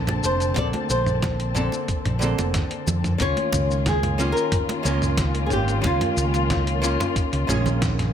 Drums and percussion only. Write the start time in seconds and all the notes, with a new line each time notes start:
0.07 closed hi-hat, mid tom, muted conga
0.24 shaker
0.40 closed hi-hat, shaker
0.56 kick, closed hi-hat, mid tom, muted conga, shaker
0.73 closed hi-hat, high conga
0.90 shaker
1.06 mid tom, shaker
1.22 kick, snare, closed hi-hat, muted conga, shaker
1.40 closed hi-hat
1.55 mid tom, shaker
1.72 muted conga, shaker
1.88 kick, closed hi-hat, shaker
2.05 closed hi-hat, mid tom
2.21 high conga, shaker
2.38 closed hi-hat, muted conga, shaker
2.54 kick, snare, closed hi-hat, mid tom, shaker
2.71 closed hi-hat
2.87 muted conga, low conga, shaker
3.04 closed hi-hat, mid tom, shaker
3.20 kick, closed hi-hat, shaker
3.37 closed hi-hat, high conga
3.53 mid tom, muted conga, shaker
3.71 shaker
3.86 kick, snare, closed hi-hat, shaker
4.03 closed hi-hat, mid tom, muted conga
4.20 shaker
4.37 shaker
4.52 kick, closed hi-hat, mid tom, shaker
4.69 closed hi-hat, muted conga
4.85 high conga, shaker
5.02 closed hi-hat, mid tom, shaker
5.17 kick, snare, closed hi-hat, muted conga, shaker
5.35 closed hi-hat
5.50 mid tom, shaker
5.68 closed hi-hat, shaker
5.84 kick, closed hi-hat, muted conga, shaker
6.01 closed hi-hat, mid tom, high conga
6.17 shaker
6.34 closed hi-hat, muted conga, shaker
6.50 kick, snare, closed hi-hat, mid tom, shaker
6.67 closed hi-hat
6.84 shaker
7.00 closed hi-hat, mid tom, muted conga, shaker
7.16 kick, closed hi-hat, shaker
7.33 closed hi-hat
7.49 mid tom, muted conga, high conga, shaker
7.66 closed hi-hat, low conga, shaker
7.82 kick, snare, closed hi-hat, shaker
7.99 snare, closed hi-hat, mid tom